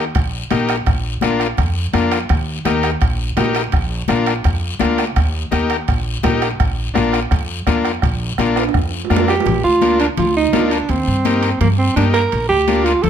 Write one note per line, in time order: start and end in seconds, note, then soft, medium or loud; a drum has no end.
0.15 0.44 A#1 medium
0.15 bombo low medium
0.15 bombo rim medium
0.15 high conga soft
0.15 high timbale medium
0.15 long guiro medium
0.51 0.80 A#1 medium
0.51 0.76 D#4 medium
0.51 0.76 G4 medium
0.51 0.76 A#4 medium
0.51 bombo rim medium
0.51 high conga medium
0.51 high timbale medium
0.51 short guiro medium
0.69 bombo rim medium
0.69 high timbale medium
0.69 short guiro medium
0.86 1.15 A#1 medium
0.86 bombo low medium
0.86 bombo rim medium
0.86 high conga soft
0.86 high timbale medium
0.86 long guiro medium
1.21 1.51 A#1 medium
1.21 1.47 D4 medium
1.21 1.48 F4 medium
1.21 1.48 A#4 medium
1.21 bombo rim medium
1.21 high conga medium
1.21 high timbale medium
1.21 short guiro medium
1.40 bombo rim medium
1.40 high timbale medium
1.40 short guiro medium
1.57 1.87 F2 medium
1.57 bombo low medium
1.57 bombo rim medium
1.57 high conga soft
1.57 high timbale medium
1.57 long guiro medium
1.93 2.23 F2 medium
1.93 2.19 D4 medium
1.93 2.19 F4 medium
1.93 2.19 A#4 medium
1.93 bombo rim medium
1.93 high conga medium
1.93 high timbale medium
1.93 short guiro medium
2.11 bombo rim medium
2.11 high timbale medium
2.11 short guiro medium
2.29 2.59 D#2 medium
2.29 bombo low medium
2.29 bombo rim medium
2.29 high conga soft
2.29 high timbale medium
2.29 long guiro medium
2.65 2.94 D#2 medium
2.65 2.90 D#4 medium
2.65 2.90 G4 medium
2.65 2.91 A#4 medium
2.65 bombo rim medium
2.65 high conga medium
2.65 high timbale medium
2.65 short guiro medium
2.83 bombo rim medium
2.83 high timbale medium
2.83 short guiro medium
3.01 3.30 A#1 medium
3.01 bombo low medium
3.01 bombo rim medium
3.01 high conga soft
3.01 high timbale medium
3.01 long guiro medium
3.37 3.66 A#1 medium
3.37 3.62 D#4 medium
3.37 3.62 G4 medium
3.37 3.62 A#4 medium
3.37 bombo rim medium
3.37 high conga medium
3.37 high timbale medium
3.37 low timbale medium
3.37 short guiro medium
3.55 bombo rim medium
3.55 high timbale medium
3.55 short guiro medium
3.72 4.02 A#1 medium
3.72 bombo low medium
3.72 bombo rim medium
3.72 high conga soft
3.72 high timbale medium
3.72 long guiro medium
4.08 4.38 A#1 medium
4.08 4.34 D4 medium
4.08 4.34 F4 medium
4.08 4.34 A#4 medium
4.08 bombo rim medium
4.08 high conga medium
4.08 high timbale medium
4.08 short guiro medium
4.26 bombo rim medium
4.26 high timbale medium
4.26 short guiro medium
4.44 4.74 F2 medium
4.44 bombo low medium
4.44 bombo rim medium
4.44 high conga soft
4.44 high timbale medium
4.44 long guiro medium
4.79 5.09 D2 medium
4.79 5.05 D4 medium
4.79 5.05 F4 medium
4.79 5.05 A#4 medium
4.79 bombo rim medium
4.79 high conga medium
4.79 high timbale medium
4.79 short guiro medium
4.98 bombo rim medium
4.98 high timbale medium
4.98 short guiro medium
5.16 5.45 D#2 medium
5.16 bombo low medium
5.16 bombo rim medium
5.16 high conga soft
5.16 high timbale medium
5.16 long guiro medium
5.51 5.81 D#2 medium
5.51 5.77 D#4 medium
5.51 5.77 G4 medium
5.51 5.77 A#4 medium
5.51 bombo rim medium
5.51 high conga medium
5.51 high timbale medium
5.51 short guiro medium
5.70 bombo rim medium
5.70 high timbale medium
5.70 short guiro medium
5.88 6.17 A#1 medium
5.88 bombo low medium
5.88 bombo rim medium
5.88 high conga soft
5.88 high timbale medium
5.88 long guiro medium
6.23 6.53 A#1 medium
6.23 6.49 D#4 medium
6.23 6.48 G4 medium
6.23 6.49 A#4 medium
6.23 bombo low medium
6.23 bombo rim medium
6.23 high conga medium
6.23 high timbale medium
6.23 low timbale medium
6.23 short guiro medium
6.42 bombo rim medium
6.42 high timbale medium
6.42 short guiro medium
6.60 6.89 A#1 medium
6.60 bombo low medium
6.60 bombo rim medium
6.60 high conga soft
6.60 high timbale medium
6.60 long guiro medium
6.94 7.24 A#1 medium
6.94 7.20 D4 medium
6.94 7.20 F4 medium
6.94 7.20 A#4 medium
6.94 bombo rim medium
6.94 high conga medium
6.94 high timbale medium
6.94 short guiro medium
7.13 bombo rim medium
7.13 high timbale medium
7.13 short guiro medium
7.31 7.60 F2 medium
7.31 bombo low medium
7.31 bombo rim medium
7.31 high conga soft
7.31 high timbale medium
7.31 long guiro medium
7.66 7.96 F2 medium
7.66 7.92 D4 medium
7.66 7.92 F4 medium
7.66 7.92 A#4 medium
7.66 bombo low medium
7.66 bombo rim medium
7.66 high conga medium
7.66 high timbale medium
7.66 short guiro medium
7.85 bombo rim medium
7.85 high timbale medium
7.85 short guiro medium
8.02 8.31 A#1 medium
8.02 bombo low medium
8.02 bombo rim medium
8.02 high conga soft
8.02 high timbale medium
8.02 long guiro medium
8.38 8.67 A#1 medium
8.38 8.64 D4 medium
8.38 8.64 F4 medium
8.38 8.64 A#4 medium
8.38 bombo rim medium
8.38 high conga medium
8.38 high timbale medium
8.38 short guiro medium
8.56 bombo rim medium
8.56 high timbale medium
8.56 short guiro medium
8.69 high timbale medium
8.74 9.03 F2 medium
8.74 bombo low medium
8.74 bombo rim medium
8.74 high conga soft
8.74 long guiro medium
9.05 low timbale medium
9.10 9.39 F2 medium
9.10 9.35 D4 medium
9.10 9.35 F4 medium
9.10 9.35 A#4 medium
9.10 bombo rim medium
9.10 high conga medium
9.10 short guiro medium
9.16 low timbale loud
9.28 9.62 G4 medium
9.28 bombo rim medium
9.28 short guiro medium
9.40 low timbale loud
9.46 9.60 A#1 loud
9.46 high conga soft
9.46 low conga medium
9.46 high timbale medium
9.46 long guiro medium
9.64 10.07 D2 medium
9.64 9.97 F4 medium
9.82 10.07 D4 medium
9.82 10.07 F4 medium
9.82 10.07 A#4 medium
9.82 high conga medium
9.82 high timbale medium
9.82 short guiro medium
10.00 10.08 D4 medium
10.00 high timbale medium
10.00 short guiro medium
10.17 10.46 D2 medium
10.17 10.35 F4 medium
10.17 high conga soft
10.17 low conga medium
10.17 high timbale medium
10.17 long guiro medium
10.37 10.74 D#4 medium
10.53 10.82 D2 medium
10.53 10.78 D4 medium
10.53 10.78 F4 medium
10.53 10.78 A#4 medium
10.53 high conga medium
10.53 high timbale medium
10.53 low timbale medium
10.53 short guiro medium
10.71 10.92 D4 medium
10.71 high timbale medium
10.71 short guiro medium
10.89 11.03 D#2 medium
10.89 11.60 C4 medium
10.89 high conga soft
10.89 high timbale medium
10.89 long guiro medium
11.07 11.50 G2 medium
11.25 11.50 D#4 medium
11.25 11.50 G4 medium
11.25 11.50 A#4 medium
11.25 high conga medium
11.25 high timbale medium
11.25 short guiro medium
11.43 high timbale medium
11.43 short guiro medium
11.61 11.89 G2 medium
11.61 11.69 A#3 medium
11.61 high conga soft
11.61 low conga medium
11.61 high timbale medium
11.61 long guiro medium
11.78 11.95 C4 medium
11.96 12.25 G2 medium
11.96 12.04 D4 medium
11.96 12.22 D#4 medium
11.96 12.22 G4 medium
11.96 12.22 A#4 medium
11.96 high conga medium
11.96 high timbale medium
11.96 short guiro medium
12.14 12.47 A#4 medium
12.14 high timbale medium
12.14 short guiro medium
12.32 12.47 A#1 loud
12.32 high conga soft
12.32 high timbale medium
12.32 long guiro medium
12.49 12.93 D2 medium
12.49 12.86 G4 medium
12.67 12.93 D4 medium
12.67 12.93 F4 medium
12.67 12.93 A#4 medium
12.67 high conga medium
12.67 high timbale medium
12.67 short guiro medium
12.85 13.04 F4 medium
12.85 high timbale medium
12.85 short guiro medium
13.03 13.10 D2 medium
13.03 13.10 A4 medium
13.03 high conga soft
13.03 low conga medium
13.03 high timbale medium
13.03 long guiro medium